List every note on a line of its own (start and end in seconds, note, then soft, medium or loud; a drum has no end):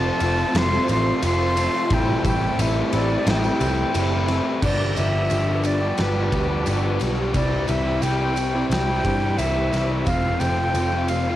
0.00 0.19 F2 loud
0.00 0.19 C3 loud
0.00 0.19 F3 loud
0.00 0.22 F3 medium
0.00 0.21 A3 loud
0.00 0.22 A3 medium
0.00 0.21 C4 medium
0.00 0.21 C4 loud
0.00 2.01 E4 medium
0.00 0.19 F4 medium
0.00 0.19 F4 loud
0.00 1.88 F4 medium
0.00 4.59 C5 medium
0.00 4.59 E5 medium
0.00 0.59 A5 loud
0.00 4.59 A5 medium
0.00 tambourine soft
0.20 0.43 F1 loud
0.20 1.21 F2 medium
0.20 1.22 C3 medium
0.20 0.54 F3 medium
0.20 0.55 A3 medium
0.20 0.55 C4 medium
0.20 0.55 F4 medium
0.20 ride medium
0.37 tambourine soft
0.54 0.77 F1 loud
0.54 1.22 F2 medium
0.54 1.22 C3 loud
0.54 0.90 F3 medium
0.54 0.90 A3 loud
0.54 0.88 C4 loud
0.54 0.87 F4 loud
0.54 1.95 A4 medium
0.54 0.90 C6 loud
0.54 snare loud
0.54 ride loud
0.54 tambourine soft
0.88 1.11 A1 loud
0.88 1.21 F3 medium
0.88 1.23 A3 medium
0.88 1.23 C4 medium
0.88 1.24 F4 medium
0.88 1.21 C6 loud
0.88 ride medium
0.88 tambourine medium
1.22 1.67 F1 medium
1.22 1.88 F2 medium
1.22 1.89 C3 medium
1.22 1.59 F3 medium
1.22 1.58 A3 medium
1.22 1.56 C4 medium
1.22 1.55 F4 medium
1.22 1.95 C6 loud
1.22 ride loud
1.22 tambourine medium
1.56 1.90 F3 medium
1.56 1.92 A3 medium
1.56 1.89 C4 medium
1.56 1.88 F4 medium
1.56 snare soft
1.56 ride medium
1.56 tambourine medium
1.74 tambourine soft
1.90 2.13 A1 loud
1.90 2.58 A2 loud
1.90 2.57 E3 loud
1.90 2.24 G3 medium
1.90 2.27 A3 loud
1.90 2.25 C4 loud
1.90 2.24 E4 medium
1.90 4.61 G4 medium
1.90 2.26 G5 loud
1.90 kick loud
1.90 ride loud
1.90 tambourine soft
2.25 2.47 A1 medium
2.25 3.95 G3 medium
2.25 2.58 A3 medium
2.25 2.60 C4 medium
2.25 2.61 E4 medium
2.25 2.62 G5 loud
2.25 kick medium
2.25 ride medium
2.25 tambourine medium
2.59 2.81 A1 loud
2.59 3.25 E3 medium
2.59 2.94 A3 medium
2.59 2.92 C4 medium
2.59 2.91 E4 medium
2.59 2.97 E5 medium
2.59 ride loud
2.59 tambourine medium
2.92 3.15 A1 loud
2.92 3.92 A2 medium
2.92 3.93 E3 medium
2.92 3.26 A3 medium
2.92 3.26 C4 medium
2.92 3.27 E4 medium
2.92 3.30 D5 medium
2.92 ride medium
2.92 tambourine soft
3.10 tambourine soft
3.25 3.49 A1 medium
3.25 3.94 A2 medium
3.25 3.92 E3 loud
3.25 3.61 A3 loud
3.25 3.60 C4 loud
3.25 3.58 E4 loud
3.25 4.63 A4 medium
3.25 4.29 G5 medium
3.25 snare loud
3.25 ride loud
3.25 tambourine soft
3.44 tambourine medium
3.59 3.83 C2 loud
3.59 3.93 A3 medium
3.59 3.94 C4 medium
3.59 3.95 E4 medium
3.59 ride medium
3.59 tambourine medium
3.77 tambourine soft
3.93 4.39 F#1 loud
3.93 4.60 A2 medium
3.93 4.60 E3 medium
3.93 4.29 A3 medium
3.93 4.28 C4 medium
3.93 4.26 E4 medium
3.93 ride loud
3.93 tambourine medium
4.27 4.61 A3 medium
4.27 4.61 C4 medium
4.27 4.60 E4 medium
4.27 snare soft
4.27 ride medium
4.62 4.93 G1 medium
4.62 5.28 G2 medium
4.62 5.29 D3 medium
4.62 4.95 F3 loud
4.62 4.97 G3 loud
4.62 4.98 B3 medium
4.62 7.33 F4 medium
4.62 10.04 G4 medium
4.62 4.99 G4 loud
4.62 7.33 B4 medium
4.62 4.94 D5 loud
4.62 7.33 A5 medium
4.62 kick loud
4.62 crash loud
4.62 tambourine medium
4.96 5.27 G1 medium
4.96 5.30 F3 medium
4.96 5.31 G3 medium
4.96 5.32 B3 medium
4.96 5.32 G4 medium
4.96 5.68 E5 loud
4.96 ride medium
4.96 tambourine medium
5.12 5.29 F3 medium
5.12 5.31 G3 medium
5.12 5.31 B3 medium
5.12 5.32 G4 medium
5.29 5.91 G1 loud
5.29 5.81 G2 medium
5.29 5.81 D3 medium
5.29 5.49 F3 loud
5.29 5.49 G3 loud
5.29 5.48 B3 loud
5.29 5.47 G4 loud
5.29 ride medium
5.29 tambourine loud
5.48 5.63 F3 medium
5.48 5.64 G3 medium
5.48 5.65 B3 medium
5.48 5.65 G4 medium
5.63 5.81 F3 medium
5.63 5.81 G3 medium
5.63 5.80 B3 medium
5.63 5.80 G4 medium
5.63 6.03 D5 loud
5.63 muted overdriven electric guitar stroke soft
5.63 ride medium
5.63 tambourine medium
5.80 6.17 F3 medium
5.80 6.16 G3 medium
5.80 6.15 B3 medium
5.80 6.14 G4 medium
5.80 muted overdriven electric guitar stroke medium
5.98 6.29 G1 loud
5.98 7.02 B4 medium
5.98 snare loud
5.98 ride loud
5.98 tambourine soft
6.15 6.31 F3 medium
6.15 6.32 G3 medium
6.15 6.33 B3 medium
6.15 6.34 G4 medium
6.32 6.63 D2 medium
6.32 6.51 F3 medium
6.32 6.50 G3 medium
6.32 6.49 B3 medium
6.32 6.48 G4 medium
6.32 kick medium
6.32 ride medium
6.32 tambourine soft
6.49 6.66 F3 medium
6.49 6.67 G3 medium
6.49 6.67 B3 medium
6.49 6.68 G4 medium
6.66 6.97 G1 medium
6.66 7.17 G2 medium
6.66 7.18 D3 medium
6.66 6.86 F3 loud
6.66 6.85 G3 loud
6.66 6.84 B3 loud
6.66 6.82 G4 loud
6.66 ride loud
6.66 tambourine medium
6.83 6.99 F3 medium
6.83 7.01 G3 medium
6.83 7.01 B3 medium
6.83 7.02 G4 medium
7.00 7.31 B1 medium
7.00 7.32 F3 medium
7.00 7.33 G3 medium
7.00 7.34 B3 medium
7.00 muted overdriven electric guitar stroke medium
7.00 ride medium
7.00 tambourine medium
7.04 7.34 G4 medium
7.17 7.34 F3 medium
7.17 7.33 G3 medium
7.17 7.33 B3 medium
7.17 7.32 G4 medium
7.34 7.65 C2 medium
7.34 8.01 C3 medium
7.34 7.68 E3 loud
7.34 7.69 G3 loud
7.34 7.70 C4 loud
7.34 7.71 E4 loud
7.34 7.84 G4 loud
7.34 11.36 C5 medium
7.34 7.70 D5 medium
7.34 11.36 G5 medium
7.34 10.04 B5 medium
7.34 kick loud
7.34 ride loud
7.34 tambourine medium
7.68 7.99 C2 medium
7.68 8.03 E3 medium
7.68 8.03 G3 medium
7.68 8.05 C4 medium
7.68 8.05 E4 medium
7.68 8.03 E5 loud
7.68 ride medium
7.68 tambourine medium
7.86 8.02 G3 medium
7.86 8.04 C4 medium
7.86 8.04 G4 medium
8.02 8.63 C2 medium
8.02 8.54 C3 medium
8.02 8.37 E3 medium
8.02 8.22 G3 loud
8.02 8.21 C4 loud
8.02 8.39 G4 loud
8.02 8.70 G5 loud
8.02 ride medium
8.02 tambourine medium
8.06 8.20 E4 loud
8.20 8.36 G3 medium
8.20 8.37 C4 medium
8.20 8.37 E4 medium
8.36 8.55 E3 medium
8.36 8.54 G3 medium
8.36 8.55 C4 medium
8.36 8.54 G4 medium
8.36 muted overdriven electric guitar stroke soft
8.36 ride medium
8.36 tambourine medium
8.54 8.90 G3 medium
8.54 8.89 C4 medium
8.54 8.87 E4 medium
8.54 muted overdriven electric guitar stroke soft
8.70 9.00 C2 loud
8.70 9.40 G5 loud
8.70 snare loud
8.70 ride loud
8.70 tambourine soft
8.88 9.05 G3 medium
8.88 9.06 C4 medium
8.88 9.07 E4 medium
8.88 9.06 G4 medium
9.04 9.35 G2 loud
9.04 9.40 E3 medium
9.04 9.24 G3 medium
9.04 9.23 C4 medium
9.04 9.21 E4 medium
9.04 9.20 G4 medium
9.04 kick medium
9.04 ride medium
9.04 tambourine soft
9.22 9.40 G3 medium
9.22 9.41 C4 medium
9.22 9.42 E4 medium
9.22 9.40 G4 medium
9.38 9.69 C2 loud
9.38 9.90 C3 medium
9.38 9.73 E3 loud
9.38 9.58 G3 medium
9.38 9.58 C4 loud
9.38 9.56 E4 loud
9.38 9.73 G4 loud
9.38 9.89 E5 loud
9.38 ride loud
9.38 tambourine medium
9.56 9.73 G3 medium
9.56 9.75 C4 medium
9.56 9.76 E4 medium
9.73 10.03 C2 medium
9.73 10.09 E3 medium
9.73 10.06 G3 medium
9.73 10.10 C4 medium
9.73 10.11 E4 medium
9.73 muted overdriven electric guitar stroke soft
9.73 snare soft
9.73 ride medium
9.73 tambourine medium
9.90 10.06 G3 medium
9.90 10.08 C4 medium
9.90 10.05 G4 medium
10.06 10.37 F1 medium
10.06 10.74 F2 medium
10.06 10.75 C3 loud
10.06 10.40 F3 loud
10.06 10.42 A3 medium
10.06 11.36 F4 medium
10.06 10.41 F5 loud
10.06 11.36 A5 medium
10.06 kick loud
10.06 ride loud
10.06 tambourine medium
10.10 10.43 C4 loud
10.10 10.44 F4 loud
10.40 10.71 F1 medium
10.40 10.75 F3 medium
10.40 10.77 A3 medium
10.40 11.36 A4 medium
10.40 11.11 G5 loud
10.40 ride medium
10.40 tambourine medium
10.44 10.78 C4 medium
10.44 10.77 F4 medium
10.58 10.75 F3 medium
10.58 10.76 A3 medium
10.58 10.77 C4 medium
10.58 10.76 F4 medium
10.74 11.35 F1 loud
10.74 11.26 F2 loud
10.74 11.26 C3 loud
10.74 10.94 F3 medium
10.74 10.94 A3 loud
10.74 10.93 C4 loud
10.74 10.91 F4 loud
10.74 ride medium
10.74 tambourine loud
10.92 11.09 F3 medium
10.92 11.11 A3 medium
10.92 11.11 C4 medium
10.92 11.10 F4 medium
11.08 11.26 F3 medium
11.08 11.26 A3 medium
11.08 11.36 C4 medium
11.08 11.25 C4 medium
11.08 11.25 F4 medium
11.08 11.36 F5 loud
11.08 muted overdriven electric guitar stroke soft
11.08 ride medium
11.08 tambourine medium
11.26 11.36 F3 medium
11.26 11.36 A3 medium
11.26 11.36 C4 medium
11.26 11.36 F4 medium
11.26 muted overdriven electric guitar stroke medium